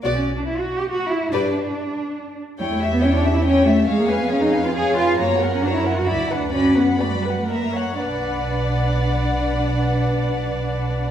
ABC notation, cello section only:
X:1
M:3/4
L:1/16
Q:1/4=137
K:Bm
V:1 name="Cello section"
B, C2 D E F2 G F2 E2 | D8- D2 z2 | G, A,2 B, C D2 E C2 A,2 | ^G, ^A,2 B, C ^D2 ^E ^G2 E2 |
^A, B,2 C D E2 F E2 D2 | C2 B,2 A, G,2 A, ^A,4 | D12- | D12 |]